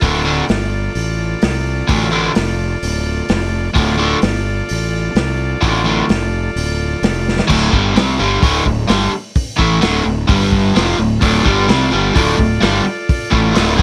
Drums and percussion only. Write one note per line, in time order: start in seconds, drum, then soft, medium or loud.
0.02 kick loud
0.02 open hi-hat medium
0.49 snare loud
0.49 open hi-hat medium
0.95 open hi-hat medium
1.42 snare loud
1.42 open hi-hat medium
1.89 kick loud
1.89 open hi-hat medium
2.35 snare loud
2.35 open hi-hat medium
2.83 open hi-hat medium
3.29 snare loud
3.29 open hi-hat medium
3.75 kick loud
3.75 open hi-hat medium
4.22 snare loud
4.22 open hi-hat medium
4.69 open hi-hat medium
5.15 snare loud
5.15 open hi-hat medium
5.62 kick loud
5.62 open hi-hat medium
6.09 snare loud
6.09 open hi-hat medium
6.57 open hi-hat medium
7.03 snare loud
7.03 open hi-hat medium
7.28 snare medium
7.39 snare medium
7.50 kick loud
7.50 crash loud
7.73 kick medium
7.96 snare loud
7.96 open hi-hat medium
8.43 kick loud
8.43 open hi-hat medium
8.66 kick medium
8.89 snare loud
8.89 open hi-hat medium
9.36 kick loud
9.36 open hi-hat medium
9.59 kick medium
9.82 snare loud
9.82 open hi-hat medium
10.29 kick loud
10.29 open hi-hat medium
10.52 kick medium
10.76 snare loud
10.76 open hi-hat medium
11.22 kick loud
11.22 open hi-hat medium
11.46 kick medium
11.69 snare loud
11.69 open hi-hat medium
12.16 kick loud
12.16 open hi-hat medium
12.39 kick medium
12.62 snare loud
12.62 open hi-hat medium
13.09 kick loud
13.09 open hi-hat medium
13.32 kick medium
13.55 snare loud
13.55 open hi-hat medium
13.79 kick loud